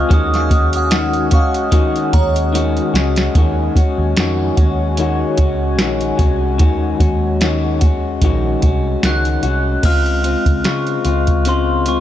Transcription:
Already playing: F4 D#5 G#5
0.09 D#2 D#3 G#3 C#4 F#4 F#5, kick, closed hi-hat
0.14 D#6
0.34 F5 C#6, snare, closed hi-hat
0.49 G#3 C#4 F#4, kick, closed hi-hat
0.73 F#5 D#6, closed hi-hat
0.91 D#3 G#3 C#4 F#4, snare, closed hi-hat
1.13 closed hi-hat
1.31 C#2 G#3 C#4 F#4 F5 C#6, kick, closed hi-hat
1.54 closed hi-hat
1.72 D#3 G#3 C#4 F#4, kick, closed hi-hat
1.96 closed hi-hat
2.13 D#2 G#3 C#4 F#4 C#5 A#5, kick, closed hi-hat
2.36 closed hi-hat
2.53 D#3 G#3 C#4 F#4, closed hi-hat
2.77 closed hi-hat
2.94 C#2 G#3 C#4 F#4, snare, closed hi-hat
3.16 snare, closed hi-hat
3.34 D#2 D#3 G#3 C#4 F#4 C#5 F#5 G#5, kick, closed hi-hat
3.38 F#4
3.76 G#3 C#4 F#4, kick, closed hi-hat
3.98 D#2
4.17 F2 D#3 G#3 C#4 F#4, snare, closed hi-hat
4.57 D#2 G#3 C#4 F#4, kick, closed hi-hat
4.97 D#3 G#3 C#4 F#4, closed hi-hat
5.37 C#2 G#3 C#4 F#4, kick, closed hi-hat
5.78 A#1 D#3 G#3 C#4, snare, closed hi-hat
5.82 F#4
6.01 closed hi-hat
6.18 C2 G#3 C#4 F#4, kick, closed hi-hat
6.58 D#2 D#3 G#3 C#4 F#4, kick, closed hi-hat
7.00 D#2 G#3 C#4 F#4, kick, closed hi-hat
7.41 D#3 G#3 C#4 F#4, snare, closed hi-hat
7.81 G#3 C#4 F#4, kick, closed hi-hat
8.22 A#1 D#3 G#3 C#4 F#4, kick, closed hi-hat
8.62 C2 G#3 C#4 F#4, kick, closed hi-hat
9.03 C#2 D#3 G#3 C#4 F#4 F#6, snare, closed hi-hat
9.25 closed hi-hat
9.43 C2 G#3 C#4 F#4, closed hi-hat
9.83 C#2 C#3 G#3 C4 F4 F6, kick, closed hi-hat, crash
10.06 closed hi-hat
10.23 G#3 C4 F4, closed hi-hat
10.46 C#2, kick, closed hi-hat
10.64 C#3 G#3 C4 F4 C#6, snare, closed hi-hat
10.87 closed hi-hat
11.05 C#2 G#3 C4 F4, closed hi-hat
11.27 kick, closed hi-hat
11.45 C#3 G#3 C4 F4 C6, closed hi-hat
11.86 G#3 C4 F4 C#6, closed hi-hat

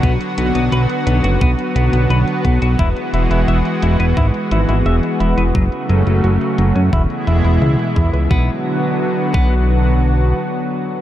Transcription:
Already playing: D3 F#3 B3 F#4
0.03 B1 B3, kick, closed hi-hat
0.21 closed hi-hat
0.38 B1 B3, closed hi-hat
0.55 B1 B3, closed hi-hat
0.72 B1 B4, closed hi-hat
0.89 closed hi-hat
1.07 B1 B3, closed hi-hat
1.24 F#1 F#4, closed hi-hat
1.41 B1 B3, kick, closed hi-hat
1.59 closed hi-hat
1.76 B1 B3, closed hi-hat
1.93 B1 B3, closed hi-hat
2.10 B1 B4, closed hi-hat
2.27 closed hi-hat
2.45 B1 B3, kick, closed hi-hat
2.62 B1 F#4, closed hi-hat
2.79 E1 E3 G#3 E4, kick, closed hi-hat
2.96 closed hi-hat
3.13 E1 E4, closed hi-hat
3.31 E1 E4, closed hi-hat
3.48 E1 E5, closed hi-hat
3.65 closed hi-hat
3.82 E1 E4, closed hi-hat
4.00 E1 B4, closed hi-hat
4.17 G#1 E4, kick, closed hi-hat
4.34 closed hi-hat
4.51 G#1 E4, closed hi-hat
4.69 G#1 E4, closed hi-hat
4.86 E1 E5, closed hi-hat
5.03 closed hi-hat
5.20 E1 E4, closed hi-hat
5.38 E1 B4, closed hi-hat
5.55 F#1 C#3 F#3 A3, kick, closed hi-hat
5.72 closed hi-hat
5.89 F#1 F#3, closed hi-hat
6.07 F#1 F#3, closed hi-hat
6.24 F#1 F#4, closed hi-hat
6.41 closed hi-hat
6.58 F#1 F#3, closed hi-hat
6.76 F#2 C#4, closed hi-hat
6.93 E1 B2 E3 G#3 E4, kick, closed hi-hat
7.10 closed hi-hat
7.27 E1 E4, closed hi-hat
7.45 E1 E4, closed hi-hat
7.62 C#2 E5, closed hi-hat
7.79 closed hi-hat
7.96 E2 E4, kick, closed hi-hat
8.13 C#2 B4, closed hi-hat
8.30 B1 D3 F#3 B3 F#4, kick
9.34 B1 B3, kick

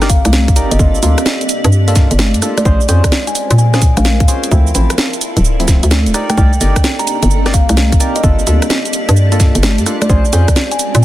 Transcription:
Already playing: G1 C4 G4 D5
0.02 D#4 G4 A#4 D5, cross-stick, snare, closed hi-hat, cabasa
0.09 F5, kick, open hi-hat, cabasa
0.25 C2, cross-stick, closed hi-hat, high conga, cabasa
0.33 snare, cabasa
0.48 kick, closed hi-hat, cabasa
0.56 G1 D#4 G4 A#4 D5, open hi-hat, cabasa
0.71 G1 D#5, closed hi-hat, cabasa
0.79 G1 A#3 D4 F4 A4, kick, cabasa
0.95 cabasa
1.03 D2 A#3 D4 F4 A4, open hi-hat, cabasa
1.18 cross-stick, closed hi-hat, cabasa
1.26 snare, cabasa
1.41 closed hi-hat, cabasa
1.49 open hi-hat, cabasa
1.64 G2, closed hi-hat, cabasa
1.72 cabasa
1.88 A#3 D4 F4 A4, open hi-hat, cabasa
1.96 A#3 D4 F4 A4, kick, snare, open hi-hat, cabasa
2.11 G1, closed hi-hat, cabasa
2.19 snare, high conga, cabasa
2.34 G2, closed hi-hat, cabasa
2.42 A#3 D4 F4 A4, cross-stick, open hi-hat, cabasa
2.58 D5, cross-stick, closed hi-hat, high conga, cabasa
2.65 A#1 G#3 C4 C#4 F4 G#4 A#4 C5 D5, kick, cabasa
2.81 cabasa
2.89 F2 C#4 F4 G#4 C5, open hi-hat, cabasa
3.04 kick, cross-stick, closed hi-hat, cabasa
3.08 F5, snare, cabasa
3.27 G#5, closed hi-hat, cabasa
3.35 open hi-hat, cabasa
3.51 A#2 C6, closed hi-hat, cabasa
3.58 G#5, cabasa
3.74 C#4 F4 G#4 C5 G#5, cross-stick, snare, closed hi-hat, cabasa
3.82 kick, open hi-hat, cabasa
3.97 A#1 F5, cross-stick, closed hi-hat, high conga, cabasa
4.05 F5, snare, cabasa
4.20 A#2, kick, closed hi-hat, cabasa
4.28 C#4 F4 G#4 C5, open hi-hat, cabasa
4.44 closed hi-hat, cabasa
4.51 D2 F3 A3 C4 E4 A4 D5, kick, cabasa
4.67 cabasa
4.73 A1 F3 A3 C4 E4 E5, open hi-hat, cabasa
4.90 cross-stick, closed hi-hat, cabasa
4.96 A4, snare, cabasa
5.13 closed hi-hat, cabasa
5.21 open hi-hat, cabasa
5.37 D1, closed hi-hat, cabasa
5.45 cabasa
5.60 F3 A3 C4 E4, open hi-hat, cabasa
5.68 F3 E4, kick, snare, open hi-hat, cabasa
5.83 D2, closed hi-hat, cabasa
5.91 snare, high conga, cabasa
6.06 D1, closed hi-hat, cabasa
6.14 A#3 C4 D4 D#4 G4 A#4 D5, cross-stick, open hi-hat, cabasa
6.30 G5, cross-stick, closed hi-hat, high conga, cabasa
6.38 C2 D#4 G4 A#4 D5 G5, kick, cabasa
6.53 cabasa
6.61 G1 D#4 G4 A#4 D5, open hi-hat, cabasa
6.76 kick, cross-stick, closed hi-hat, cabasa
6.84 snare, cabasa
6.99 A#5, closed hi-hat, cabasa
7.07 D5, open hi-hat, cabasa
7.23 G1, closed hi-hat, cabasa
7.31 cabasa
7.46 D#4 G4 A#4 D5, cross-stick, snare, closed hi-hat, cabasa
7.54 F5, kick, open hi-hat, cabasa
7.69 C2, cross-stick, closed hi-hat, high conga, cabasa
7.77 snare, cabasa
7.92 G1, kick, closed hi-hat, cabasa
8.00 D#4 G4 A#4 D5, open hi-hat, cabasa
8.16 D#5, closed hi-hat, cabasa
8.23 G1 A#3 D4 F4 A4, kick, cabasa
8.39 A5, cabasa
8.47 D2 A#3 D4 F4 A4, open hi-hat, cabasa
8.62 cross-stick, closed hi-hat, cabasa
8.70 snare, cabasa
8.85 closed hi-hat, cabasa
8.93 open hi-hat, cabasa
9.09 G2, closed hi-hat, cabasa
9.17 cabasa
9.32 A#3 D4 F4 A4, open hi-hat, cabasa
9.40 A#3, kick, snare, open hi-hat, cabasa
9.55 G1, closed hi-hat, cabasa
9.63 snare, high conga, cabasa
9.78 G2, closed hi-hat, cabasa
9.86 A#3 D4 F4 A4, cross-stick, open hi-hat, cabasa
10.02 D5, cross-stick, closed hi-hat, high conga, cabasa
10.09 A#1 G#3 C4 C#4 F4 G#4 A#4 C5 D5, kick, cabasa
10.25 cabasa
10.33 F2 C#4 F4 G#4 C5, open hi-hat, cabasa
10.48 kick, cross-stick, closed hi-hat, cabasa
10.54 F5, snare, cabasa
10.71 G#5, closed hi-hat, cabasa
10.79 open hi-hat, cabasa
10.95 A#2, closed hi-hat, cabasa

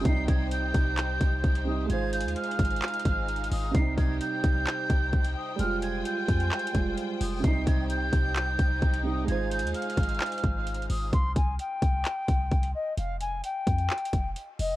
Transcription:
Already playing: C5 G5
0.01 C2 C3 G3 D#4 G4, kick, closed hi-hat
0.05 D#4 C7
0.28 C2 G#6, kick, closed hi-hat
0.51 G6, closed hi-hat
0.74 C2, kick, closed hi-hat
0.98 clap, closed hi-hat
1.21 C2, kick, closed hi-hat
1.44 C2, kick, closed hi-hat
1.55 closed hi-hat
1.65 C3 G3 D#4 D#6
1.86 G#3 F4 G#6
1.90 G#1 D#4 G#4 C5 F5, closed hi-hat
2.13 G6, closed hi-hat
2.21 D#2, closed hi-hat
2.28 closed hi-hat
2.36 F6, closed hi-hat
2.44 closed hi-hat
2.51 closed hi-hat
2.59 G#1, kick, closed hi-hat
2.65 closed hi-hat
2.71 closed hi-hat
2.76 closed hi-hat
2.82 clap, closed hi-hat
2.88 closed hi-hat
2.94 closed hi-hat
3.00 closed hi-hat
3.05 G#1, kick, closed hi-hat
3.28 closed hi-hat
3.36 closed hi-hat
3.44 closed hi-hat
3.51 G#1 D#6, open hi-hat
3.71 C2 C3 G3 G4 C5 G5 C7, kick, closed hi-hat
3.79 D#4
3.98 C2 G#6, kick, closed hi-hat
4.20 G6, closed hi-hat
4.44 C2, kick, closed hi-hat
4.67 clap, closed hi-hat
4.90 C2, kick, closed hi-hat
5.13 C2, kick, closed hi-hat
5.25 closed hi-hat
5.36 D#6
5.56 F1 G3 G#3 F4 G#5 F6, closed hi-hat
5.63 F4
5.82 G#6, closed hi-hat
6.05 G6, closed hi-hat
6.28 F2, kick, closed hi-hat
6.40 closed hi-hat
6.51 clap, closed hi-hat
6.59 closed hi-hat
6.67 closed hi-hat
6.73 F1 G3 G#3 F4, kick, closed hi-hat
6.97 closed hi-hat
7.21 F1 D#6, open hi-hat
7.40 C2 C3 G3 D#4 G4, kick, closed hi-hat
7.44 D#4 C7
7.67 C2 G#6, kick, closed hi-hat
7.90 G6, closed hi-hat
8.13 C2, kick, closed hi-hat
8.36 clap, closed hi-hat
8.59 C2, kick, closed hi-hat
8.82 C2, kick, closed hi-hat
8.94 closed hi-hat
9.03 C3 G3 D#4 D#6
9.24 G#3 F4 G#6
9.28 G#1 G#4 C5 F5, closed hi-hat
9.51 G6, closed hi-hat
9.59 D#2, closed hi-hat
9.67 closed hi-hat
9.74 F6, closed hi-hat
9.82 closed hi-hat
9.90 closed hi-hat
9.98 G#1, kick, closed hi-hat
10.03 closed hi-hat
10.09 closed hi-hat
10.15 closed hi-hat
10.21 clap, closed hi-hat
10.26 closed hi-hat
10.32 closed hi-hat
10.38 closed hi-hat
10.44 G#1, kick, closed hi-hat
10.67 closed hi-hat
10.74 closed hi-hat
10.82 closed hi-hat
10.90 G#1 D#6, open hi-hat
11.13 C2 C6, kick, closed hi-hat
11.36 C2 G#5, kick, closed hi-hat
11.59 G5, closed hi-hat
11.82 C2, kick, closed hi-hat
12.05 clap, closed hi-hat
12.28 C2, kick, closed hi-hat
12.51 C2, kick, closed hi-hat
12.63 closed hi-hat
12.75 D#5
12.98 F1 F5, closed hi-hat
13.21 G#5, closed hi-hat
13.44 G5, closed hi-hat
13.67 F2, kick, closed hi-hat
13.78 closed hi-hat
13.90 clap, closed hi-hat
13.98 closed hi-hat
14.05 closed hi-hat
14.13 F1, kick, closed hi-hat
14.36 closed hi-hat
14.59 F1 D#5, open hi-hat

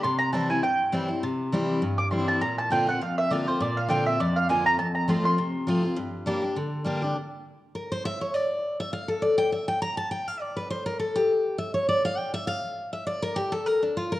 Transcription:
0.03 C3 C6
0.18 A#5
0.33 E3 G3 C4 E4 A5
0.50 C4 E4 G#5
0.63 G2 G5
0.92 E3 G3 C4 E4
1.08 C4 E4
1.23 C3
1.52 E3 G3 C4 E4
1.82 G2
1.98 D6
2.11 E3 G3 C4 E4 C6
2.28 A5
2.41 A#2 A#5
2.58 A5
2.70 D3 A#3 C4 F4 G5
2.87 C4 F4 F#5
3.01 F2 F5
3.18 E5
3.31 D3 A#3 C4 F4 D5
3.47 C4 F4 C5
3.61 A#2 D5
3.77 F5
3.89 D3 A#3 C4 F4 G5
4.05 C4 F4 E5
4.20 F2 D5
4.36 F5
4.49 D3 A#3 C4 F4 G#5
4.65 C4 F4 A#5
4.79 F2 A5
4.95 A#5
5.08 F3 A3 C4 F4 C6
5.24 C4 F4 C6
5.38 C3
5.67 F3 A3 C4 F4
5.83 C4 F4
5.97 G2
6.26 G3 A#3 D4 G4
6.42 D4 G4
6.56 D3
6.84 G3 A#3 D4 G4
7.02 D4 G4
7.75 A#4
7.92 C5
8.05 E5
8.21 C#5
8.34 D5
8.80 E5
8.93 F5
9.08 A4
9.22 D5
9.38 G5
9.52 E5
9.68 G5
9.82 A#5
9.97 A5
10.11 G5
10.28 F5
10.41 D5
10.56 B4
10.70 C5
10.86 A#4
10.99 A4
11.16 G4
11.58 E5
11.74 C#5
11.89 D5
12.05 F5
12.17 G5
12.34 E5
12.47 F5
12.93 E5
13.07 D5
13.23 A#4
13.36 G4
13.52 A4
13.66 A#4
13.83 D4
13.97 F4
14.12 A#4

